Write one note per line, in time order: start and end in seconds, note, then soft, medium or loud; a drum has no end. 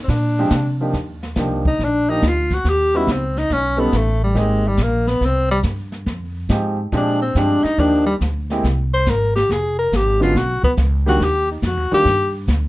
0.04 0.11 C4 medium
0.08 0.50 A#2 medium
0.08 0.80 D4 medium
0.08 brush sweep medium
0.08 kick soft
0.08 snare medium
0.39 0.51 F3 medium
0.39 0.51 G#3 medium
0.39 0.51 C4 medium
0.39 0.51 D4 medium
0.39 0.51 G4 medium
0.50 0.92 C3 medium
0.50 kick soft
0.50 snare medium
0.50 hi-hat pedal medium
0.81 0.93 F3 medium
0.81 0.93 A#3 medium
0.81 0.93 D4 medium
0.81 0.94 D#4 medium
0.81 0.93 G4 medium
0.93 1.35 D#2 medium
0.93 brush sweep soft
0.93 kick soft
0.93 snare soft
1.23 snare soft
1.36 1.78 C2 medium
1.36 1.63 F3 medium
1.36 1.63 A#3 medium
1.36 1.63 D4 soft
1.36 1.63 D#4 soft
1.36 1.63 G4 medium
1.36 kick soft
1.36 snare medium
1.36 hi-hat pedal medium
1.65 1.86 D#4 medium
1.65 kick soft
1.79 2.21 A#1 medium
1.79 brush sweep soft
1.79 kick soft
1.79 snare soft
1.84 2.11 D4 medium
2.09 2.21 F3 medium
2.09 2.22 A#3 medium
2.09 2.22 D4 medium
2.09 2.29 D#4 medium
2.09 2.22 D#4 medium
2.09 2.22 G4 medium
2.22 2.64 D2 medium
2.22 kick soft
2.22 snare medium
2.22 hi-hat pedal medium
2.28 2.55 F4 medium
2.51 2.71 F#4 medium
2.51 kick soft
2.51 snare soft
2.64 3.06 D#2 medium
2.64 brush sweep soft
2.64 kick soft
2.64 snare soft
2.69 2.98 G4 medium
2.94 3.07 G3 medium
2.94 3.07 B3 medium
2.94 3.07 C#4 medium
2.94 3.07 D#4 medium
2.94 3.14 E4 medium
2.94 3.07 F#4 medium
3.07 3.49 C#2 medium
3.07 kick soft
3.07 snare medium
3.07 hi-hat pedal medium
3.12 3.40 C4 medium
3.37 3.55 D#4 loud
3.37 snare soft
3.50 3.92 B1 medium
3.50 3.81 C#4 medium
3.50 brush sweep medium
3.50 kick soft
3.50 snare soft
3.77 3.91 G3 medium
3.77 3.91 B3 medium
3.77 3.98 B3 medium
3.77 3.91 C#4 medium
3.77 3.91 D#4 medium
3.77 3.91 A4 medium
3.92 4.34 A1 medium
3.92 kick soft
3.92 snare medium
3.92 hi-hat pedal medium
3.97 4.23 A3 medium
4.24 4.41 G3 medium
4.35 4.77 G#1 medium
4.35 4.61 G#3 medium
4.35 4.61 A#3 medium
4.35 4.62 C4 medium
4.35 4.62 D#4 medium
4.35 4.62 G4 medium
4.35 brush sweep soft
4.35 kick soft
4.35 snare soft
4.39 4.69 G#3 medium
4.68 4.84 G3 medium
4.77 5.20 A#1 medium
4.77 kick soft
4.77 snare medium
4.77 hi-hat pedal medium
4.83 5.09 A#3 medium
5.07 5.27 B3 medium
5.07 snare soft
5.21 5.63 C2 medium
5.21 brush sweep medium
5.21 kick soft
5.21 snare soft
5.25 5.51 C4 medium
5.51 5.59 G3 medium
5.63 6.05 G2 medium
5.63 kick soft
5.63 snare medium
5.63 hi-hat pedal medium
5.92 snare soft
6.06 6.48 F2 medium
6.06 brush sweep soft
6.06 kick soft
6.06 snare soft
6.49 6.91 G#2 medium
6.49 6.76 F3 medium
6.49 6.76 G#3 medium
6.49 6.76 C4 medium
6.49 6.76 D#4 medium
6.49 6.76 G4 medium
6.49 kick soft
6.49 snare medium
6.49 hi-hat pedal medium
6.92 7.34 A#2 medium
6.92 7.18 F3 medium
6.92 7.18 G#3 medium
6.92 7.18 C4 medium
6.92 7.19 D4 medium
6.92 7.19 G4 medium
6.92 brush sweep soft
6.92 kick soft
6.92 snare soft
6.97 7.21 D4 medium
7.22 7.39 C4 medium
7.35 7.62 G2 medium
7.35 7.62 F3 medium
7.35 7.62 G#3 medium
7.35 7.61 C4 medium
7.35 7.62 D4 medium
7.35 7.65 D4 medium
7.35 7.62 G4 medium
7.35 kick soft
7.35 snare medium
7.35 hi-hat pedal medium
7.64 7.81 D#4 medium
7.64 muted upright bass stroke soft
7.64 snare soft
7.78 8.19 D#2 medium
7.78 8.04 F3 medium
7.78 8.04 A#3 medium
7.78 8.04 D4 medium
7.78 8.06 D4 medium
7.78 8.05 D#4 medium
7.78 8.05 G4 medium
7.78 brush sweep soft
7.78 kick soft
7.78 snare soft
8.06 8.15 G3 medium
8.21 8.62 D2 medium
8.21 kick soft
8.21 snare medium
8.21 hi-hat pedal medium
8.50 8.63 G#3 medium
8.50 8.63 A#3 medium
8.50 8.63 C4 medium
8.50 8.63 E4 medium
8.50 8.63 G4 medium
8.50 snare soft
8.64 9.05 C2 medium
8.64 brush sweep soft
8.64 kick soft
8.64 snare soft
8.94 9.11 C5 loud
9.06 9.48 G#1 medium
9.06 9.35 A#4 medium
9.06 kick soft
9.06 snare medium
9.06 hi-hat pedal medium
9.36 9.53 G4 medium
9.36 snare soft
9.49 9.90 F1 medium
9.49 9.78 G#4 medium
9.49 brush sweep soft
9.49 kick soft
9.49 snare soft
9.79 9.97 A#4 medium
9.92 10.33 G#1 medium
9.92 10.22 G4 medium
9.92 kick soft
9.92 snare medium
9.92 hi-hat pedal medium
10.20 10.33 D3 medium
10.20 10.33 G#3 medium
10.20 10.33 B3 medium
10.20 10.33 C#4 medium
10.20 10.38 F4 medium
10.20 10.33 F#4 medium
10.20 snare soft
10.35 10.61 B1 medium
10.35 10.64 F#4 medium
10.35 brush sweep soft
10.35 kick soft
10.35 snare soft
10.63 10.72 B3 medium
10.63 muted upright bass stroke soft
10.63 kick medium
10.77 11.18 C#2 medium
10.77 kick soft
10.77 snare medium
10.77 hi-hat pedal medium
11.06 11.19 D#3 medium
11.06 11.19 G3 medium
11.06 11.19 A#3 medium
11.06 11.19 D4 medium
11.06 11.26 F#4 medium
11.06 11.19 G4 medium
11.06 snare soft
11.20 11.61 D#2 medium
11.20 brush sweep soft
11.20 kick soft
11.20 snare soft
11.24 11.50 G4 medium
11.52 11.68 D#4 medium
11.62 11.77 F2 medium
11.62 kick soft
11.62 snare medium
11.62 hi-hat pedal medium
11.66 11.93 F#4 medium
11.77 11.91 D#2 medium
11.91 12.05 D2 medium
11.91 12.04 D#3 medium
11.91 12.04 G3 medium
11.91 12.04 A#3 medium
11.91 12.04 D4 medium
11.91 12.04 F4 medium
11.91 12.32 G4 loud
11.91 snare soft
12.05 12.46 G2 medium
12.05 brush sweep medium
12.05 kick soft
12.05 snare soft
12.48 12.68 D2 medium
12.48 kick soft
12.48 snare medium
12.48 hi-hat pedal medium